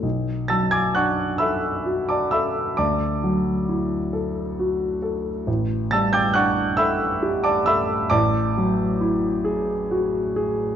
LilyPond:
\new Staff \with { instrumentName = "Grand piano" } { \time 6/8 \key b \minor \tempo 4. = 45 << { r8 <a'' e''' a'''>16 <gis'' d''' gis'''>16 <fis'' cis''' fis'''>8 <e'' b'' e'''>8. <d'' a'' d'''>16 <e'' b'' e'''>8 | <d'' a'' d'''>2~ <d'' a'' d'''>8 r8 | r8 <a'' e''' a'''>16 <g'' d''' g'''>16 <fis'' cis''' fis'''>8 <e'' b'' e'''>8. <d'' a'' d'''>16 <e'' b'' e'''>8 | <d'' a'' d'''>2~ <d'' a'' d'''>8 r8 | } \\ { b,,8 fis8 d'8 a'8 fis'8 a'8 | d,8 fis8 e'8 a'8 fis'8 a'8 | a,,8 g8 d'8 a'8 g'8 a'8 | a,,8 fis8 e'8 gis'8 fis'8 gis'8 | } >> }